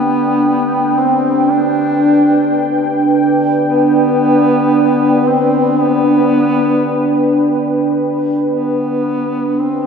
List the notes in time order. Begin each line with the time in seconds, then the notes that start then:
Already playing: B3 D4 A4 G5
0.28 B4
0.98 C4
1.51 D4
3.67 B3
5.27 C4
5.81 B3
8.52 B3
9.60 C4